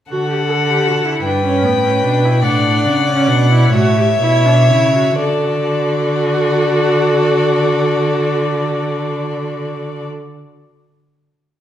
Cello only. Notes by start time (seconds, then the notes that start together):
0.11 D3
1.24 G2
1.63 A2
2.02 B2
2.43 A2
2.85 C#3
3.28 B2
3.72 A2
4.20 B2
4.69 C#3
5.20 D3